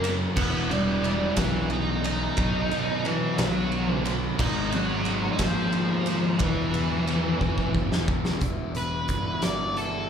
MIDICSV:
0, 0, Header, 1, 7, 480
1, 0, Start_track
1, 0, Tempo, 671141
1, 266, Time_signature, 6, 3, 24, 8
1, 7220, End_track
2, 0, Start_track
2, 0, Title_t, "Lead electric guitar"
2, 0, Program_c, 0, 29
2, 257, Note_on_c, 0, 59, 102
2, 261, Note_on_c, 0, 71, 74
2, 485, Note_off_c, 0, 71, 0
2, 503, Note_on_c, 0, 55, 77
2, 508, Note_off_c, 0, 59, 0
2, 508, Note_on_c, 0, 67, 85
2, 954, Note_off_c, 0, 55, 0
2, 955, Note_off_c, 0, 67, 0
2, 982, Note_on_c, 0, 64, 103
2, 985, Note_on_c, 0, 52, 78
2, 1206, Note_off_c, 0, 52, 0
2, 1229, Note_off_c, 0, 64, 0
2, 1232, Note_on_c, 0, 63, 103
2, 1233, Note_on_c, 0, 75, 69
2, 1450, Note_off_c, 0, 75, 0
2, 1467, Note_off_c, 0, 63, 0
2, 1469, Note_on_c, 0, 75, 86
2, 1476, Note_on_c, 0, 63, 100
2, 2155, Note_off_c, 0, 75, 0
2, 2192, Note_on_c, 0, 52, 76
2, 2193, Note_off_c, 0, 63, 0
2, 2196, Note_on_c, 0, 64, 90
2, 2409, Note_off_c, 0, 52, 0
2, 2432, Note_off_c, 0, 64, 0
2, 2434, Note_on_c, 0, 54, 78
2, 2435, Note_on_c, 0, 66, 92
2, 2807, Note_off_c, 0, 66, 0
2, 2807, Note_on_c, 0, 64, 92
2, 2937, Note_off_c, 0, 64, 0
2, 2938, Note_off_c, 0, 54, 0
2, 3141, Note_on_c, 0, 75, 76
2, 3147, Note_on_c, 0, 63, 98
2, 3363, Note_off_c, 0, 75, 0
2, 3367, Note_off_c, 0, 63, 0
2, 3395, Note_on_c, 0, 54, 76
2, 3400, Note_on_c, 0, 66, 88
2, 3788, Note_off_c, 0, 54, 0
2, 3802, Note_off_c, 0, 66, 0
2, 3805, Note_on_c, 0, 63, 74
2, 3857, Note_off_c, 0, 63, 0
2, 3869, Note_on_c, 0, 53, 72
2, 3874, Note_on_c, 0, 65, 102
2, 4557, Note_off_c, 0, 53, 0
2, 4577, Note_on_c, 0, 52, 67
2, 4582, Note_off_c, 0, 65, 0
2, 4585, Note_on_c, 0, 64, 89
2, 5512, Note_off_c, 0, 52, 0
2, 5516, Note_off_c, 0, 64, 0
2, 6270, Note_on_c, 0, 71, 77
2, 6735, Note_off_c, 0, 71, 0
2, 6750, Note_on_c, 0, 74, 86
2, 6982, Note_off_c, 0, 74, 0
2, 6990, Note_on_c, 0, 69, 84
2, 7220, Note_off_c, 0, 69, 0
2, 7220, End_track
3, 0, Start_track
3, 0, Title_t, "Clean electric guitar"
3, 0, Program_c, 1, 27
3, 6009, Note_on_c, 1, 52, 92
3, 6018, Note_on_c, 1, 55, 91
3, 6025, Note_on_c, 1, 59, 96
3, 6035, Note_on_c, 1, 64, 95
3, 6253, Note_off_c, 1, 64, 0
3, 6256, Note_on_c, 1, 64, 67
3, 6259, Note_off_c, 1, 59, 0
3, 6267, Note_on_c, 1, 59, 66
3, 6268, Note_off_c, 1, 55, 0
3, 6276, Note_on_c, 1, 55, 53
3, 6497, Note_off_c, 1, 52, 0
3, 6497, Note_off_c, 1, 55, 0
3, 6500, Note_on_c, 1, 52, 69
3, 6506, Note_off_c, 1, 59, 0
3, 6506, Note_on_c, 1, 55, 69
3, 6515, Note_on_c, 1, 59, 67
3, 6519, Note_off_c, 1, 64, 0
3, 6521, Note_on_c, 1, 64, 81
3, 6737, Note_off_c, 1, 64, 0
3, 6746, Note_off_c, 1, 59, 0
3, 6755, Note_off_c, 1, 55, 0
3, 6755, Note_on_c, 1, 59, 59
3, 6764, Note_on_c, 1, 55, 47
3, 6979, Note_off_c, 1, 52, 0
3, 6981, Note_off_c, 1, 55, 0
3, 6982, Note_on_c, 1, 52, 73
3, 6986, Note_off_c, 1, 59, 0
3, 6990, Note_on_c, 1, 55, 70
3, 6995, Note_on_c, 1, 59, 69
3, 7003, Note_on_c, 1, 64, 80
3, 7216, Note_off_c, 1, 64, 0
3, 7220, Note_off_c, 1, 52, 0
3, 7220, Note_off_c, 1, 55, 0
3, 7220, Note_off_c, 1, 59, 0
3, 7220, End_track
4, 0, Start_track
4, 0, Title_t, "Distorted electric guitar"
4, 0, Program_c, 2, 30
4, 0, Note_on_c, 2, 42, 88
4, 0, Note_on_c, 2, 49, 97
4, 0, Note_on_c, 2, 54, 89
4, 0, Note_on_c, 2, 58, 90
4, 0, Note_on_c, 2, 61, 107
4, 246, Note_off_c, 2, 42, 0
4, 251, Note_off_c, 2, 49, 0
4, 253, Note_off_c, 2, 54, 0
4, 255, Note_off_c, 2, 58, 0
4, 258, Note_off_c, 2, 61, 0
4, 261, Note_on_c, 2, 52, 94
4, 269, Note_on_c, 2, 55, 86
4, 278, Note_on_c, 2, 59, 90
4, 283, Note_on_c, 2, 64, 101
4, 1684, Note_off_c, 2, 52, 0
4, 1688, Note_off_c, 2, 55, 0
4, 1695, Note_off_c, 2, 64, 0
4, 1703, Note_on_c, 2, 47, 82
4, 1710, Note_on_c, 2, 51, 103
4, 1716, Note_on_c, 2, 54, 107
4, 1720, Note_off_c, 2, 59, 0
4, 1723, Note_on_c, 2, 59, 89
4, 1727, Note_on_c, 2, 63, 98
4, 3126, Note_off_c, 2, 47, 0
4, 3129, Note_off_c, 2, 51, 0
4, 3132, Note_off_c, 2, 54, 0
4, 3137, Note_on_c, 2, 44, 94
4, 3138, Note_off_c, 2, 63, 0
4, 3148, Note_on_c, 2, 51, 87
4, 3153, Note_off_c, 2, 59, 0
4, 3155, Note_on_c, 2, 56, 101
4, 3156, Note_on_c, 2, 59, 100
4, 3163, Note_on_c, 2, 63, 97
4, 4565, Note_off_c, 2, 44, 0
4, 4570, Note_off_c, 2, 51, 0
4, 4573, Note_off_c, 2, 56, 0
4, 4574, Note_on_c, 2, 52, 89
4, 4578, Note_off_c, 2, 63, 0
4, 4580, Note_on_c, 2, 55, 104
4, 4589, Note_off_c, 2, 59, 0
4, 4592, Note_on_c, 2, 59, 102
4, 4596, Note_on_c, 2, 64, 96
4, 6006, Note_off_c, 2, 52, 0
4, 6009, Note_off_c, 2, 55, 0
4, 6015, Note_off_c, 2, 59, 0
4, 6017, Note_off_c, 2, 64, 0
4, 7220, End_track
5, 0, Start_track
5, 0, Title_t, "Distorted electric guitar"
5, 0, Program_c, 3, 30
5, 18, Note_on_c, 3, 42, 80
5, 19, Note_on_c, 3, 49, 84
5, 26, Note_on_c, 3, 54, 82
5, 247, Note_off_c, 3, 42, 0
5, 248, Note_off_c, 3, 49, 0
5, 251, Note_off_c, 3, 54, 0
5, 252, Note_on_c, 3, 40, 100
5, 255, Note_on_c, 3, 47, 103
5, 257, Note_on_c, 3, 52, 105
5, 730, Note_off_c, 3, 40, 0
5, 735, Note_off_c, 3, 47, 0
5, 737, Note_off_c, 3, 52, 0
5, 738, Note_on_c, 3, 40, 87
5, 744, Note_on_c, 3, 47, 84
5, 746, Note_on_c, 3, 52, 85
5, 966, Note_off_c, 3, 40, 0
5, 974, Note_off_c, 3, 47, 0
5, 975, Note_off_c, 3, 52, 0
5, 975, Note_on_c, 3, 40, 90
5, 982, Note_on_c, 3, 47, 97
5, 984, Note_on_c, 3, 52, 112
5, 1460, Note_off_c, 3, 40, 0
5, 1463, Note_off_c, 3, 47, 0
5, 1468, Note_off_c, 3, 52, 0
5, 1468, Note_on_c, 3, 40, 84
5, 1472, Note_on_c, 3, 47, 83
5, 1476, Note_on_c, 3, 52, 89
5, 1683, Note_off_c, 3, 47, 0
5, 1690, Note_off_c, 3, 40, 0
5, 1692, Note_on_c, 3, 47, 87
5, 1694, Note_off_c, 3, 52, 0
5, 1698, Note_on_c, 3, 54, 93
5, 1702, Note_on_c, 3, 59, 106
5, 2169, Note_off_c, 3, 47, 0
5, 2177, Note_off_c, 3, 54, 0
5, 2177, Note_on_c, 3, 47, 76
5, 2185, Note_on_c, 3, 54, 91
5, 2188, Note_off_c, 3, 59, 0
5, 2191, Note_on_c, 3, 59, 92
5, 2407, Note_off_c, 3, 47, 0
5, 2413, Note_off_c, 3, 54, 0
5, 2415, Note_on_c, 3, 47, 91
5, 2420, Note_off_c, 3, 59, 0
5, 2422, Note_on_c, 3, 54, 92
5, 2423, Note_on_c, 3, 59, 111
5, 2896, Note_off_c, 3, 47, 0
5, 2896, Note_off_c, 3, 54, 0
5, 2905, Note_on_c, 3, 47, 87
5, 2905, Note_on_c, 3, 54, 96
5, 2909, Note_off_c, 3, 59, 0
5, 2911, Note_on_c, 3, 59, 83
5, 3127, Note_off_c, 3, 47, 0
5, 3127, Note_off_c, 3, 54, 0
5, 3144, Note_on_c, 3, 44, 105
5, 3151, Note_on_c, 3, 51, 99
5, 3153, Note_on_c, 3, 56, 116
5, 3612, Note_off_c, 3, 44, 0
5, 3618, Note_off_c, 3, 51, 0
5, 3620, Note_off_c, 3, 56, 0
5, 3620, Note_on_c, 3, 44, 90
5, 3626, Note_on_c, 3, 51, 87
5, 3629, Note_on_c, 3, 56, 89
5, 3848, Note_off_c, 3, 44, 0
5, 3854, Note_off_c, 3, 51, 0
5, 3856, Note_off_c, 3, 56, 0
5, 3857, Note_on_c, 3, 44, 94
5, 3863, Note_on_c, 3, 51, 107
5, 3865, Note_on_c, 3, 56, 107
5, 4339, Note_off_c, 3, 44, 0
5, 4342, Note_off_c, 3, 51, 0
5, 4347, Note_on_c, 3, 44, 82
5, 4349, Note_off_c, 3, 56, 0
5, 4351, Note_on_c, 3, 51, 95
5, 4357, Note_on_c, 3, 56, 89
5, 4569, Note_off_c, 3, 44, 0
5, 4571, Note_off_c, 3, 51, 0
5, 4575, Note_off_c, 3, 56, 0
5, 4577, Note_on_c, 3, 40, 90
5, 4587, Note_on_c, 3, 47, 93
5, 4591, Note_on_c, 3, 52, 107
5, 5050, Note_off_c, 3, 40, 0
5, 5051, Note_off_c, 3, 47, 0
5, 5058, Note_on_c, 3, 40, 79
5, 5060, Note_on_c, 3, 47, 88
5, 5061, Note_off_c, 3, 52, 0
5, 5070, Note_on_c, 3, 52, 87
5, 5280, Note_off_c, 3, 40, 0
5, 5285, Note_off_c, 3, 47, 0
5, 5288, Note_on_c, 3, 40, 106
5, 5291, Note_off_c, 3, 52, 0
5, 5293, Note_on_c, 3, 47, 98
5, 5300, Note_on_c, 3, 52, 106
5, 5415, Note_off_c, 3, 59, 0
5, 5760, Note_off_c, 3, 40, 0
5, 5769, Note_off_c, 3, 47, 0
5, 5769, Note_on_c, 3, 40, 78
5, 5772, Note_off_c, 3, 52, 0
5, 5777, Note_on_c, 3, 47, 81
5, 5780, Note_on_c, 3, 52, 86
5, 5999, Note_off_c, 3, 40, 0
5, 6006, Note_off_c, 3, 47, 0
5, 6008, Note_off_c, 3, 52, 0
5, 6008, Note_on_c, 3, 40, 85
5, 6021, Note_on_c, 3, 47, 93
5, 6034, Note_on_c, 3, 52, 99
5, 6724, Note_off_c, 3, 40, 0
5, 6729, Note_off_c, 3, 52, 0
5, 6731, Note_off_c, 3, 47, 0
5, 6732, Note_on_c, 3, 52, 78
5, 6748, Note_on_c, 3, 47, 72
5, 6757, Note_on_c, 3, 40, 68
5, 7220, Note_off_c, 3, 40, 0
5, 7220, Note_off_c, 3, 47, 0
5, 7220, Note_off_c, 3, 52, 0
5, 7220, End_track
6, 0, Start_track
6, 0, Title_t, "Picked electric bass"
6, 0, Program_c, 4, 34
6, 0, Note_on_c, 4, 30, 106
6, 181, Note_off_c, 4, 30, 0
6, 263, Note_on_c, 4, 28, 116
6, 898, Note_off_c, 4, 28, 0
6, 983, Note_on_c, 4, 35, 91
6, 1618, Note_off_c, 4, 35, 0
6, 1701, Note_on_c, 4, 35, 93
6, 1913, Note_off_c, 4, 35, 0
6, 1940, Note_on_c, 4, 47, 86
6, 2364, Note_off_c, 4, 47, 0
6, 2422, Note_on_c, 4, 35, 104
6, 3057, Note_off_c, 4, 35, 0
6, 3145, Note_on_c, 4, 32, 105
6, 3779, Note_off_c, 4, 32, 0
6, 3854, Note_on_c, 4, 39, 95
6, 4579, Note_on_c, 4, 28, 104
6, 4590, Note_off_c, 4, 39, 0
6, 4792, Note_off_c, 4, 28, 0
6, 4823, Note_on_c, 4, 40, 94
6, 5247, Note_off_c, 4, 40, 0
6, 5299, Note_on_c, 4, 28, 96
6, 5939, Note_off_c, 4, 28, 0
6, 6017, Note_on_c, 4, 28, 83
6, 6445, Note_off_c, 4, 28, 0
6, 6501, Note_on_c, 4, 31, 81
6, 7220, Note_off_c, 4, 31, 0
6, 7220, End_track
7, 0, Start_track
7, 0, Title_t, "Drums"
7, 27, Note_on_c, 9, 51, 80
7, 98, Note_off_c, 9, 51, 0
7, 260, Note_on_c, 9, 49, 109
7, 264, Note_on_c, 9, 36, 115
7, 332, Note_off_c, 9, 49, 0
7, 336, Note_off_c, 9, 36, 0
7, 509, Note_on_c, 9, 51, 69
7, 580, Note_off_c, 9, 51, 0
7, 744, Note_on_c, 9, 51, 77
7, 816, Note_off_c, 9, 51, 0
7, 976, Note_on_c, 9, 51, 112
7, 981, Note_on_c, 9, 36, 85
7, 981, Note_on_c, 9, 38, 112
7, 1047, Note_off_c, 9, 51, 0
7, 1052, Note_off_c, 9, 38, 0
7, 1053, Note_off_c, 9, 36, 0
7, 1214, Note_on_c, 9, 51, 74
7, 1286, Note_off_c, 9, 51, 0
7, 1461, Note_on_c, 9, 51, 73
7, 1533, Note_off_c, 9, 51, 0
7, 1693, Note_on_c, 9, 51, 106
7, 1701, Note_on_c, 9, 36, 112
7, 1765, Note_off_c, 9, 51, 0
7, 1772, Note_off_c, 9, 36, 0
7, 1941, Note_on_c, 9, 51, 68
7, 2012, Note_off_c, 9, 51, 0
7, 2180, Note_on_c, 9, 51, 73
7, 2252, Note_off_c, 9, 51, 0
7, 2419, Note_on_c, 9, 51, 102
7, 2424, Note_on_c, 9, 38, 119
7, 2491, Note_off_c, 9, 51, 0
7, 2496, Note_off_c, 9, 38, 0
7, 2658, Note_on_c, 9, 51, 68
7, 2730, Note_off_c, 9, 51, 0
7, 2899, Note_on_c, 9, 51, 74
7, 2971, Note_off_c, 9, 51, 0
7, 3139, Note_on_c, 9, 49, 113
7, 3141, Note_on_c, 9, 36, 122
7, 3210, Note_off_c, 9, 49, 0
7, 3213, Note_off_c, 9, 36, 0
7, 3378, Note_on_c, 9, 51, 74
7, 3450, Note_off_c, 9, 51, 0
7, 3612, Note_on_c, 9, 51, 83
7, 3683, Note_off_c, 9, 51, 0
7, 3852, Note_on_c, 9, 51, 118
7, 3857, Note_on_c, 9, 36, 80
7, 3857, Note_on_c, 9, 38, 118
7, 3924, Note_off_c, 9, 51, 0
7, 3928, Note_off_c, 9, 36, 0
7, 3929, Note_off_c, 9, 38, 0
7, 4094, Note_on_c, 9, 51, 85
7, 4165, Note_off_c, 9, 51, 0
7, 4333, Note_on_c, 9, 51, 80
7, 4404, Note_off_c, 9, 51, 0
7, 4571, Note_on_c, 9, 51, 113
7, 4579, Note_on_c, 9, 36, 120
7, 4642, Note_off_c, 9, 51, 0
7, 4650, Note_off_c, 9, 36, 0
7, 4819, Note_on_c, 9, 51, 75
7, 4891, Note_off_c, 9, 51, 0
7, 5059, Note_on_c, 9, 51, 80
7, 5130, Note_off_c, 9, 51, 0
7, 5300, Note_on_c, 9, 36, 73
7, 5371, Note_off_c, 9, 36, 0
7, 5419, Note_on_c, 9, 36, 68
7, 5491, Note_off_c, 9, 36, 0
7, 5540, Note_on_c, 9, 36, 77
7, 5611, Note_off_c, 9, 36, 0
7, 5665, Note_on_c, 9, 38, 76
7, 5737, Note_off_c, 9, 38, 0
7, 5779, Note_on_c, 9, 36, 110
7, 5850, Note_off_c, 9, 36, 0
7, 5900, Note_on_c, 9, 38, 85
7, 5972, Note_off_c, 9, 38, 0
7, 6013, Note_on_c, 9, 42, 81
7, 6019, Note_on_c, 9, 36, 108
7, 6085, Note_off_c, 9, 42, 0
7, 6090, Note_off_c, 9, 36, 0
7, 6256, Note_on_c, 9, 42, 56
7, 6327, Note_off_c, 9, 42, 0
7, 6495, Note_on_c, 9, 42, 63
7, 6500, Note_on_c, 9, 36, 77
7, 6566, Note_off_c, 9, 42, 0
7, 6572, Note_off_c, 9, 36, 0
7, 6737, Note_on_c, 9, 42, 95
7, 6742, Note_on_c, 9, 38, 106
7, 6808, Note_off_c, 9, 42, 0
7, 6813, Note_off_c, 9, 38, 0
7, 6984, Note_on_c, 9, 42, 63
7, 7056, Note_off_c, 9, 42, 0
7, 7220, End_track
0, 0, End_of_file